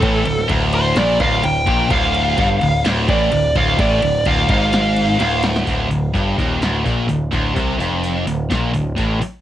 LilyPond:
<<
  \new Staff \with { instrumentName = "Lead electric guitar" } { \time 4/4 \key d \minor \tempo 4 = 127 a'4 r8 c''8 d''8 f''8 g''4 | f''2 r8 d''4 f''8 | d''4 f''8 f''2 r8 | r1 |
r1 | }
  \new Staff \with { instrumentName = "Distorted electric guitar" } { \clef bass \time 4/4 \key d \minor a,8 d,8 d,4 bes,8 d,8 d,8 bes,8 | d,4 g,8 d,8 d,8 a,8 d,8 d,8 | a,8 d,8 d,8 gis,4. d,4 | d,8 d,8 g,8 ees,8 d,8 bes,8 d,8 d,8 |
c8 f,4 d,8 bes,8 d,8 a,8 r8 | }
  \new Staff \with { instrumentName = "Picked electric bass" } { \clef bass \time 4/4 \key d \minor a,,8 d,,8 d,,4 bes,,8 d,,8 d,,8 bes,,8 | d,,4 g,,8 d,,8 d,,8 a,,8 d,,8 d,,8 | a,,8 d,,8 d,,8 gis,,4. d,,4 | d,,8 d,,8 g,,8 ees,,8 d,,8 bes,,8 d,,8 d,,8 |
c,8 f,,4 d,,8 bes,,8 d,,8 a,,8 r8 | }
  \new DrumStaff \with { instrumentName = "Drums" } \drummode { \time 4/4 <bd cymr>8 cymr16 sn16 <bd cymr>8 cymr8 <cymr sn>8 <bd cymr>8 cymr8 <bd cymr>8 | <bd cymr>8 cymr8 <bd cymr>8 cymr8 <cymr sn>8 <bd cymr>8 cymr8 <bd cymr>8 | <bd cymr>8 cymr8 <bd cymr>8 <bd cymr>8 <cymr sn>8 cymr8 <cymr sn>8 <cymr sn>16 sn16 | <hho bd>8 hho8 <hho bd>8 <hho bd>8 <hho sn>8 <hho bd>8 hho8 <hho bd>8 |
<hho bd>8 hho8 hho8 hho8 <hho bd sn>8 hho8 <hho bd>8 hho8 | }
>>